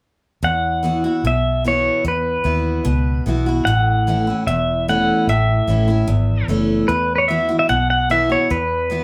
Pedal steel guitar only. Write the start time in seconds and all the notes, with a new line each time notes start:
0.44 F#5
1.27 E5
1.68 C#5
2.08 B4
3.65 F#5
4.47 E5
4.89 F#5
5.29 E5
6.88 B4
7.16 B4 C#5
7.28 E5
7.59 E5
7.69 F#5
7.90 F#5
8.11 E5
8.32 C#5
8.51 B4